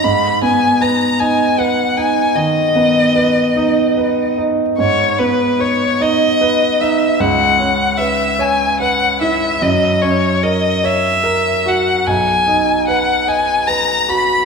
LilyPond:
<<
  \new Staff \with { instrumentName = "Violin" } { \time 12/8 \key gis \minor \tempo 4. = 49 b''8 gis''8 ais''8 gis''8 fis''8 gis''8 dis''2~ dis''8 r8 | cis''8 b'8 cis''8 dis''4 e''8 fis''4 e''8 gis''8 fis''8 e''8 | dis''8 cis''8 dis''8 e''4 fis''8 gis''4 fis''8 gis''8 ais''8 b''8 | }
  \new Staff \with { instrumentName = "Grand piano" } { \time 12/8 \key gis \minor gis,8 b8 b'8 dis'8 b'8 dis'8 dis8 b8 b'8 dis'8 b'8 dis'8 | gis,8 b8 b'8 dis'8 b'8 dis'8 cis,8 cis'8 b'8 cis''8 b'8 e'8 | fis,8 cis'8 ais'8 cis''8 ais'8 fis'8 b,,8 dis'8 b'8 dis''8 b'8 fis'8 | }
>>